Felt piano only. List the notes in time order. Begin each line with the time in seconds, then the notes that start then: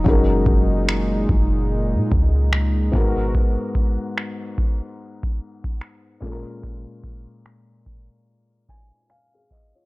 0.04 F#3 C#4 D#4 G#4
0.09 A#4
2.92 G#2 G#3 B3 F#4
2.97 A#4
6.20 A#2 G#3 C#4 F4
6.25 A4
6.32 A#4
8.69 G#5
9.10 F5 G#5
9.34 G#4 F5
9.52 D#5
9.75 F4 C#5